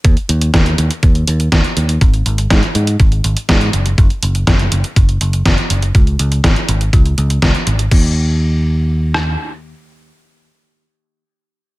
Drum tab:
CC |----------------|----------------|----------------|----------------|
HH |xxxxxxxxxxxxxxxx|xxxxxxxxxxxxxxxx|xxxxxxxxxxxxxxxx|xxxxxxxxxxxxxxxx|
SD |----o-------o---|----o-------o---|----o-------o---|----o-------o---|
BD |o---o---o---o---|o---o---o---o---|o---o---o---o---|o---o---o---o---|

CC |x---------------|----------------|
HH |----------------|----------------|
SD |----------r-----|----------------|
BD |o---------------|----------------|